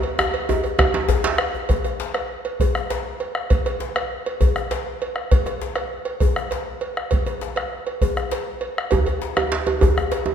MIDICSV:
0, 0, Header, 1, 4, 480
1, 0, Start_track
1, 0, Tempo, 300903
1, 2702, Time_signature, 12, 3, 24, 8
1, 16506, End_track
2, 0, Start_track
2, 0, Title_t, "Bombo"
2, 303, Note_on_c, 9, 37, 110
2, 463, Note_off_c, 9, 37, 0
2, 777, Note_on_c, 9, 37, 33
2, 937, Note_off_c, 9, 37, 0
2, 1261, Note_on_c, 9, 37, 91
2, 1261, Note_on_c, 9, 43, 96
2, 1421, Note_off_c, 9, 37, 0
2, 1421, Note_off_c, 9, 43, 0
2, 1752, Note_on_c, 9, 37, 32
2, 1911, Note_off_c, 9, 37, 0
2, 1984, Note_on_c, 9, 37, 29
2, 2144, Note_off_c, 9, 37, 0
2, 2207, Note_on_c, 9, 37, 90
2, 2367, Note_off_c, 9, 37, 0
2, 2704, Note_on_c, 9, 43, 81
2, 2863, Note_off_c, 9, 43, 0
2, 2952, Note_on_c, 9, 37, 31
2, 3111, Note_off_c, 9, 37, 0
2, 3421, Note_on_c, 9, 37, 73
2, 3581, Note_off_c, 9, 37, 0
2, 4142, Note_on_c, 9, 43, 92
2, 4301, Note_off_c, 9, 43, 0
2, 4388, Note_on_c, 9, 37, 74
2, 4548, Note_off_c, 9, 37, 0
2, 5344, Note_on_c, 9, 37, 73
2, 5503, Note_off_c, 9, 37, 0
2, 5592, Note_on_c, 9, 43, 97
2, 5752, Note_off_c, 9, 43, 0
2, 5840, Note_on_c, 9, 37, 35
2, 6000, Note_off_c, 9, 37, 0
2, 6315, Note_on_c, 9, 37, 79
2, 6475, Note_off_c, 9, 37, 0
2, 7038, Note_on_c, 9, 43, 92
2, 7197, Note_off_c, 9, 43, 0
2, 7272, Note_on_c, 9, 37, 70
2, 7431, Note_off_c, 9, 37, 0
2, 8226, Note_on_c, 9, 37, 65
2, 8385, Note_off_c, 9, 37, 0
2, 8480, Note_on_c, 9, 43, 98
2, 8640, Note_off_c, 9, 43, 0
2, 8712, Note_on_c, 9, 37, 32
2, 8872, Note_off_c, 9, 37, 0
2, 9181, Note_on_c, 9, 37, 67
2, 9340, Note_off_c, 9, 37, 0
2, 9898, Note_on_c, 9, 43, 90
2, 10057, Note_off_c, 9, 43, 0
2, 10150, Note_on_c, 9, 37, 70
2, 10309, Note_off_c, 9, 37, 0
2, 11121, Note_on_c, 9, 37, 66
2, 11281, Note_off_c, 9, 37, 0
2, 11364, Note_on_c, 9, 43, 94
2, 11523, Note_off_c, 9, 43, 0
2, 11848, Note_on_c, 9, 37, 31
2, 12008, Note_off_c, 9, 37, 0
2, 12081, Note_on_c, 9, 37, 68
2, 12241, Note_off_c, 9, 37, 0
2, 12333, Note_on_c, 9, 37, 28
2, 12492, Note_off_c, 9, 37, 0
2, 12783, Note_on_c, 9, 43, 85
2, 12942, Note_off_c, 9, 43, 0
2, 13035, Note_on_c, 9, 37, 67
2, 13194, Note_off_c, 9, 37, 0
2, 13283, Note_on_c, 9, 37, 30
2, 13442, Note_off_c, 9, 37, 0
2, 14009, Note_on_c, 9, 37, 69
2, 14169, Note_off_c, 9, 37, 0
2, 14247, Note_on_c, 9, 43, 88
2, 14407, Note_off_c, 9, 43, 0
2, 14475, Note_on_c, 9, 37, 29
2, 14634, Note_off_c, 9, 37, 0
2, 14944, Note_on_c, 9, 37, 82
2, 15104, Note_off_c, 9, 37, 0
2, 15669, Note_on_c, 9, 43, 82
2, 15828, Note_off_c, 9, 43, 0
2, 15914, Note_on_c, 9, 37, 73
2, 16074, Note_off_c, 9, 37, 0
2, 16506, End_track
3, 0, Start_track
3, 0, Title_t, "Djembe"
3, 298, Note_on_c, 9, 63, 92
3, 307, Note_off_c, 9, 63, 0
3, 307, Note_on_c, 9, 62, 69
3, 307, Note_on_c, 9, 63, 71
3, 467, Note_off_c, 9, 62, 0
3, 467, Note_off_c, 9, 63, 0
3, 784, Note_on_c, 9, 63, 96
3, 787, Note_on_c, 9, 64, 84
3, 943, Note_off_c, 9, 63, 0
3, 947, Note_off_c, 9, 64, 0
3, 1028, Note_on_c, 9, 63, 51
3, 1188, Note_off_c, 9, 63, 0
3, 1255, Note_on_c, 9, 63, 118
3, 1415, Note_off_c, 9, 63, 0
3, 1503, Note_on_c, 9, 63, 115
3, 1504, Note_on_c, 9, 62, 25
3, 1662, Note_off_c, 9, 63, 0
3, 1663, Note_off_c, 9, 62, 0
3, 1731, Note_on_c, 9, 62, 79
3, 1731, Note_on_c, 9, 63, 73
3, 1731, Note_on_c, 9, 64, 85
3, 1890, Note_off_c, 9, 62, 0
3, 1890, Note_off_c, 9, 63, 0
3, 1890, Note_off_c, 9, 64, 0
3, 1975, Note_on_c, 9, 62, 23
3, 1980, Note_off_c, 9, 62, 0
3, 1980, Note_on_c, 9, 62, 108
3, 2140, Note_off_c, 9, 62, 0
3, 2466, Note_on_c, 9, 62, 21
3, 2466, Note_on_c, 9, 63, 52
3, 2625, Note_off_c, 9, 62, 0
3, 2625, Note_off_c, 9, 63, 0
3, 2707, Note_on_c, 9, 62, 25
3, 2707, Note_on_c, 9, 64, 84
3, 2866, Note_off_c, 9, 62, 0
3, 2866, Note_off_c, 9, 64, 0
3, 2949, Note_on_c, 9, 62, 24
3, 2949, Note_on_c, 9, 63, 67
3, 3108, Note_off_c, 9, 62, 0
3, 3108, Note_off_c, 9, 63, 0
3, 3187, Note_on_c, 9, 62, 82
3, 3347, Note_off_c, 9, 62, 0
3, 4153, Note_on_c, 9, 64, 87
3, 4313, Note_off_c, 9, 64, 0
3, 4395, Note_on_c, 9, 63, 63
3, 4554, Note_off_c, 9, 63, 0
3, 4634, Note_on_c, 9, 62, 82
3, 4793, Note_off_c, 9, 62, 0
3, 5361, Note_on_c, 9, 62, 18
3, 5520, Note_off_c, 9, 62, 0
3, 5595, Note_on_c, 9, 62, 22
3, 5595, Note_on_c, 9, 64, 63
3, 5754, Note_off_c, 9, 62, 0
3, 5754, Note_off_c, 9, 64, 0
3, 5833, Note_on_c, 9, 62, 22
3, 5833, Note_on_c, 9, 63, 55
3, 5992, Note_off_c, 9, 62, 0
3, 5992, Note_off_c, 9, 63, 0
3, 6067, Note_on_c, 9, 62, 68
3, 6226, Note_off_c, 9, 62, 0
3, 7028, Note_on_c, 9, 64, 78
3, 7188, Note_off_c, 9, 64, 0
3, 7271, Note_on_c, 9, 63, 59
3, 7431, Note_off_c, 9, 63, 0
3, 7513, Note_on_c, 9, 62, 78
3, 7672, Note_off_c, 9, 62, 0
3, 8239, Note_on_c, 9, 62, 23
3, 8399, Note_off_c, 9, 62, 0
3, 8478, Note_on_c, 9, 62, 24
3, 8478, Note_on_c, 9, 64, 72
3, 8638, Note_off_c, 9, 62, 0
3, 8638, Note_off_c, 9, 64, 0
3, 8709, Note_on_c, 9, 62, 24
3, 8709, Note_on_c, 9, 63, 62
3, 8869, Note_off_c, 9, 62, 0
3, 8869, Note_off_c, 9, 63, 0
3, 8957, Note_on_c, 9, 62, 68
3, 9117, Note_off_c, 9, 62, 0
3, 9910, Note_on_c, 9, 64, 85
3, 10069, Note_off_c, 9, 64, 0
3, 10160, Note_on_c, 9, 63, 57
3, 10319, Note_off_c, 9, 63, 0
3, 10398, Note_on_c, 9, 62, 70
3, 10558, Note_off_c, 9, 62, 0
3, 11113, Note_on_c, 9, 62, 18
3, 11272, Note_off_c, 9, 62, 0
3, 11345, Note_on_c, 9, 62, 21
3, 11345, Note_on_c, 9, 64, 62
3, 11504, Note_off_c, 9, 62, 0
3, 11504, Note_off_c, 9, 64, 0
3, 11588, Note_on_c, 9, 63, 53
3, 11748, Note_off_c, 9, 63, 0
3, 11827, Note_on_c, 9, 62, 65
3, 11987, Note_off_c, 9, 62, 0
3, 12075, Note_on_c, 9, 62, 19
3, 12235, Note_off_c, 9, 62, 0
3, 12788, Note_on_c, 9, 64, 76
3, 12947, Note_off_c, 9, 64, 0
3, 13025, Note_on_c, 9, 62, 26
3, 13025, Note_on_c, 9, 63, 55
3, 13185, Note_off_c, 9, 62, 0
3, 13185, Note_off_c, 9, 63, 0
3, 13263, Note_on_c, 9, 62, 72
3, 13423, Note_off_c, 9, 62, 0
3, 14226, Note_on_c, 9, 62, 24
3, 14226, Note_on_c, 9, 64, 74
3, 14228, Note_off_c, 9, 64, 0
3, 14228, Note_on_c, 9, 64, 103
3, 14385, Note_off_c, 9, 62, 0
3, 14387, Note_off_c, 9, 64, 0
3, 14467, Note_on_c, 9, 62, 23
3, 14467, Note_on_c, 9, 63, 56
3, 14627, Note_off_c, 9, 62, 0
3, 14627, Note_off_c, 9, 63, 0
3, 14702, Note_on_c, 9, 62, 67
3, 14861, Note_off_c, 9, 62, 0
3, 14947, Note_on_c, 9, 63, 77
3, 15106, Note_off_c, 9, 63, 0
3, 15183, Note_on_c, 9, 62, 80
3, 15342, Note_off_c, 9, 62, 0
3, 15421, Note_on_c, 9, 63, 85
3, 15581, Note_off_c, 9, 63, 0
3, 15653, Note_on_c, 9, 64, 100
3, 15664, Note_off_c, 9, 64, 0
3, 15664, Note_on_c, 9, 64, 74
3, 15823, Note_off_c, 9, 64, 0
3, 15905, Note_on_c, 9, 63, 58
3, 16065, Note_off_c, 9, 63, 0
3, 16137, Note_on_c, 9, 62, 70
3, 16296, Note_off_c, 9, 62, 0
3, 16362, Note_on_c, 9, 63, 77
3, 16506, Note_off_c, 9, 63, 0
3, 16506, End_track
4, 0, Start_track
4, 0, Title_t, "Drums"
4, 54, Note_on_c, 9, 56, 52
4, 213, Note_off_c, 9, 56, 0
4, 540, Note_on_c, 9, 56, 57
4, 699, Note_off_c, 9, 56, 0
4, 1016, Note_on_c, 9, 56, 49
4, 1175, Note_off_c, 9, 56, 0
4, 1259, Note_on_c, 9, 56, 63
4, 1419, Note_off_c, 9, 56, 0
4, 1736, Note_on_c, 9, 56, 56
4, 1895, Note_off_c, 9, 56, 0
4, 2207, Note_on_c, 9, 56, 53
4, 2366, Note_off_c, 9, 56, 0
4, 2694, Note_on_c, 9, 56, 61
4, 2854, Note_off_c, 9, 56, 0
4, 2942, Note_on_c, 9, 56, 50
4, 3101, Note_off_c, 9, 56, 0
4, 3419, Note_on_c, 9, 56, 57
4, 3578, Note_off_c, 9, 56, 0
4, 3907, Note_on_c, 9, 56, 49
4, 4066, Note_off_c, 9, 56, 0
4, 4157, Note_on_c, 9, 56, 59
4, 4316, Note_off_c, 9, 56, 0
4, 4631, Note_on_c, 9, 56, 52
4, 4790, Note_off_c, 9, 56, 0
4, 5107, Note_on_c, 9, 56, 51
4, 5267, Note_off_c, 9, 56, 0
4, 5587, Note_on_c, 9, 56, 57
4, 5747, Note_off_c, 9, 56, 0
4, 5840, Note_on_c, 9, 56, 58
4, 5999, Note_off_c, 9, 56, 0
4, 6321, Note_on_c, 9, 56, 53
4, 6480, Note_off_c, 9, 56, 0
4, 6801, Note_on_c, 9, 56, 56
4, 6961, Note_off_c, 9, 56, 0
4, 7030, Note_on_c, 9, 56, 57
4, 7189, Note_off_c, 9, 56, 0
4, 7514, Note_on_c, 9, 56, 54
4, 7674, Note_off_c, 9, 56, 0
4, 8003, Note_on_c, 9, 56, 51
4, 8163, Note_off_c, 9, 56, 0
4, 8478, Note_on_c, 9, 56, 70
4, 8637, Note_off_c, 9, 56, 0
4, 8719, Note_on_c, 9, 56, 52
4, 8879, Note_off_c, 9, 56, 0
4, 9185, Note_on_c, 9, 56, 56
4, 9344, Note_off_c, 9, 56, 0
4, 9655, Note_on_c, 9, 56, 51
4, 9815, Note_off_c, 9, 56, 0
4, 9896, Note_on_c, 9, 56, 53
4, 10056, Note_off_c, 9, 56, 0
4, 10383, Note_on_c, 9, 56, 49
4, 10543, Note_off_c, 9, 56, 0
4, 10865, Note_on_c, 9, 56, 49
4, 11025, Note_off_c, 9, 56, 0
4, 11338, Note_on_c, 9, 56, 56
4, 11498, Note_off_c, 9, 56, 0
4, 11589, Note_on_c, 9, 56, 47
4, 11749, Note_off_c, 9, 56, 0
4, 12062, Note_on_c, 9, 56, 53
4, 12222, Note_off_c, 9, 56, 0
4, 12548, Note_on_c, 9, 56, 47
4, 12707, Note_off_c, 9, 56, 0
4, 12787, Note_on_c, 9, 56, 53
4, 12947, Note_off_c, 9, 56, 0
4, 13273, Note_on_c, 9, 56, 53
4, 13433, Note_off_c, 9, 56, 0
4, 13734, Note_on_c, 9, 56, 50
4, 13893, Note_off_c, 9, 56, 0
4, 14209, Note_on_c, 9, 56, 58
4, 14368, Note_off_c, 9, 56, 0
4, 14459, Note_on_c, 9, 56, 53
4, 14619, Note_off_c, 9, 56, 0
4, 14941, Note_on_c, 9, 56, 53
4, 15100, Note_off_c, 9, 56, 0
4, 15416, Note_on_c, 9, 56, 51
4, 15575, Note_off_c, 9, 56, 0
4, 15654, Note_on_c, 9, 56, 54
4, 15813, Note_off_c, 9, 56, 0
4, 16138, Note_on_c, 9, 56, 58
4, 16297, Note_off_c, 9, 56, 0
4, 16506, End_track
0, 0, End_of_file